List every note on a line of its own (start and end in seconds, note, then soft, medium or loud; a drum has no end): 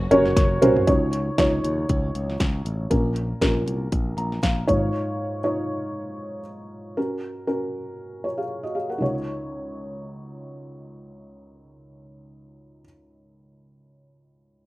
0.00 0.86 A#2 medium
0.00 0.83 C#3 medium
0.00 0.85 F#3 medium
0.00 0.11 C#4 medium
0.00 0.85 C#4 medium
0.00 0.11 F#4 medium
0.00 0.85 F#4 medium
0.00 0.11 A#4 medium
0.00 0.11 C#5 medium
0.11 0.32 F#1 medium
0.11 0.58 C#4 medium
0.11 0.58 F#4 medium
0.11 0.59 A#4 medium
0.11 0.58 C#5 medium
0.11 closed hi-hat medium
0.11 floor tom medium
0.26 snare soft
0.37 0.57 F#1 medium
0.37 kick loud
0.37 snare medium
0.37 closed hi-hat loud
0.62 0.83 C2 medium
0.62 0.86 C#4 medium
0.62 0.86 F#4 medium
0.62 0.85 A#4 medium
0.62 0.86 C5 medium
0.62 closed hi-hat medium
0.62 mid tom medium
0.76 floor tom loud
0.87 1.29 C#2 medium
0.87 1.59 C#3 medium
0.87 1.35 D#4 medium
0.87 1.35 F4 medium
0.87 1.35 C#5 medium
0.87 kick loud
0.87 closed hi-hat medium
1.13 closed hi-hat medium
1.38 1.59 C#2 medium
1.38 2.33 D#4 medium
1.38 2.33 F4 medium
1.38 2.33 C#5 medium
1.38 kick medium
1.38 snare loud
1.38 closed hi-hat medium
1.64 1.85 D#2 medium
1.64 closed hi-hat medium
1.89 2.10 C#2 medium
1.89 kick medium
1.89 closed hi-hat medium
2.15 2.36 C#2 medium
2.15 closed hi-hat medium
2.30 snare soft
2.40 2.61 C#2 medium
2.40 kick loud
2.40 snare medium
2.40 closed hi-hat medium
2.65 2.86 A1 medium
2.65 closed hi-hat medium
2.90 3.32 A#1 medium
2.90 3.63 A#2 medium
2.90 3.38 C#4 medium
2.90 3.38 F4 medium
2.90 3.38 A#4 medium
2.90 kick medium
2.90 closed hi-hat medium
3.16 closed hi-hat medium
3.41 3.62 A#1 medium
3.41 4.37 C#4 medium
3.41 4.37 F4 medium
3.41 4.37 A#4 medium
3.41 kick medium
3.41 snare medium
3.41 closed hi-hat medium
3.66 3.87 C2 medium
3.66 closed hi-hat medium
3.92 4.13 A#1 medium
3.92 kick medium
3.92 closed hi-hat medium
4.17 4.38 A#1 medium
4.17 4.41 A#5 medium
4.17 closed hi-hat medium
4.32 snare soft
4.43 4.64 A#1 medium
4.43 4.90 F5 medium
4.43 kick medium
4.43 snare medium
4.43 closed hi-hat medium
4.67 4.89 G#1 medium
4.67 5.40 G#2 medium
4.67 5.39 D#4 medium
4.67 5.39 F4 medium
4.67 5.39 C#5 medium
4.67 kick medium
4.67 closed hi-hat medium
5.44 6.39 D#4 medium
5.44 6.39 F4 medium
5.44 6.40 C#5 medium
6.97 7.45 C#4 medium
6.97 7.45 F#4 medium
6.97 7.45 A#4 medium
7.47 8.43 C#4 medium
7.47 8.24 F#4 medium
7.47 8.24 A#4 medium
8.24 8.38 F4 soft
8.24 8.38 C#5 soft
8.38 8.62 G#4 soft
8.38 8.62 F5 soft
8.63 8.75 F#4 soft
8.63 8.74 D#5 medium
8.75 8.89 G#4 soft
8.75 8.89 F5 soft
8.90 9.14 A#4 soft
8.90 9.14 F#5 soft
8.98 12.82 C#2 medium
8.98 12.80 D#4 medium
8.98 12.82 F4 soft
9.02 12.84 C#5 medium